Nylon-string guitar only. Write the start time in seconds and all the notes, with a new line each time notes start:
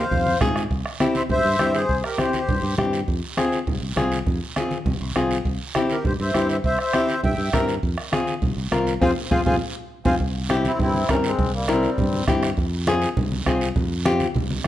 0.41 C4 F4 G#4
1.00 C4 E4 G4
1.60 C4 E4 G4
2.18 C4 E4 G4
2.78 C4 E4 G4
3.37 C4 F4 G#4
3.96 C4 F4 G#4
4.56 C4 F4 G#4
5.16 C4 F4 G#4
5.75 C4 E4 G4
6.35 C4 E4 G4
6.94 C4 E4 G4
7.53 C4 E4 A#4
8.12 C4 F4 G#4
8.72 C4 F4 A#4
9.02 C4 F4 G#4
9.31 C4 F4 G#4
9.46 C4 F4 G#4
10.05 C4 F4 G#4
10.49 C4 E4 G4
11.09 C4 E4 A#4
11.68 C4 E4 A#4
12.28 C4 E4 G4
12.87 C4 F4 G#4
13.47 C4 F4 G#4
14.05 C4 F4 G4